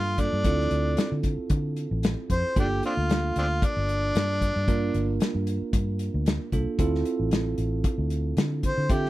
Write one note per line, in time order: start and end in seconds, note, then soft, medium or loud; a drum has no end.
0.00 0.28 G2 medium
0.00 0.15 A#3 medium
0.00 0.15 D4 medium
0.00 0.15 F4 medium
0.00 0.22 F4 medium
0.00 0.15 A4 medium
0.18 0.45 A#3 soft
0.18 0.45 D4 soft
0.18 1.22 D4 medium
0.18 0.44 F4 soft
0.18 0.44 A4 medium
0.18 kick medium
0.18 closed hi-hat medium
0.33 0.44 G2 medium
0.44 0.68 D2 medium
0.44 2.53 C4 medium
0.44 2.53 E4 medium
0.44 2.53 F4 medium
0.44 2.53 A4 medium
0.44 kick loud
0.44 closed hi-hat medium
0.60 snare soft
0.71 0.94 D2 medium
0.71 closed hi-hat medium
0.97 snare medium
0.97 closed hi-hat medium
1.12 1.35 D3 medium
1.23 kick medium
1.23 closed hi-hat medium
1.38 muted fingered electric bass stroke soft
1.50 1.86 D3 medium
1.50 kick loud
1.50 closed hi-hat medium
1.77 closed hi-hat medium
1.91 2.14 A1 medium
2.03 snare loud
2.03 closed hi-hat medium
2.30 2.42 F2 medium
2.30 2.57 C5 medium
2.30 kick medium
2.30 closed hi-hat medium
2.56 2.79 G1 medium
2.56 4.64 A#3 medium
2.56 4.64 D4 medium
2.56 2.67 D4 medium
2.56 4.64 F4 medium
2.56 2.84 G4 medium
2.56 4.64 A4 medium
2.56 kick loud
2.56 closed hi-hat medium
2.83 2.93 C4 medium
2.83 2.94 D4 medium
2.83 3.36 F4 medium
2.83 closed hi-hat medium
2.97 3.31 D2 medium
3.10 snare loud
3.10 closed hi-hat medium
3.36 3.59 D2 medium
3.36 3.46 C4 medium
3.36 3.46 D4 medium
3.36 3.67 F4 medium
3.36 closed hi-hat medium
3.62 5.18 D4 loud
3.62 kick loud
3.62 closed hi-hat medium
3.77 4.10 G1 medium
3.89 closed hi-hat medium
4.15 4.51 G2 medium
4.15 snare loud
4.15 closed hi-hat medium
4.41 kick medium
4.41 closed hi-hat medium
4.56 4.90 G2 medium
4.68 6.49 A#3 medium
4.68 6.49 D4 medium
4.68 6.49 F4 medium
4.68 6.49 A#4 medium
4.68 kick loud
4.68 closed hi-hat medium
4.94 5.18 G1 medium
4.94 closed hi-hat medium
5.20 snare loud
5.20 closed hi-hat medium
5.35 5.58 G2 medium
5.47 closed hi-hat medium
5.61 muted fingered electric bass stroke soft
5.73 6.09 G2 medium
5.73 kick loud
5.73 closed hi-hat medium
5.99 closed hi-hat medium
6.14 6.37 D2 medium
6.26 snare loud
6.26 closed hi-hat medium
6.52 6.65 C2 medium
6.52 6.79 A#3 medium
6.52 6.79 D4 medium
6.52 6.79 F4 medium
6.52 6.79 A4 medium
6.52 kick medium
6.52 closed hi-hat medium
6.79 7.02 D2 medium
6.79 8.86 C4 medium
6.79 8.86 E4 medium
6.79 8.86 F4 medium
6.79 8.86 A4 medium
6.79 kick loud
6.79 closed hi-hat medium
6.95 snare soft
7.05 closed hi-hat medium
7.20 7.53 A1 medium
7.31 snare medium
7.31 closed hi-hat medium
7.58 7.81 A1 medium
7.58 closed hi-hat medium
7.84 kick loud
7.84 closed hi-hat medium
7.98 8.32 D2 medium
8.10 closed hi-hat medium
8.37 8.73 D3 medium
8.37 snare loud
8.37 closed hi-hat medium
8.63 8.94 C5 medium
8.63 kick medium
8.63 closed hi-hat medium
8.78 9.10 D3 medium
8.89 9.10 C4 medium
8.89 9.10 F4 medium
8.89 9.10 G4 medium
8.89 9.10 A4 medium
8.89 9.10 E5 medium
8.89 kick loud
8.89 closed hi-hat medium
9.05 snare soft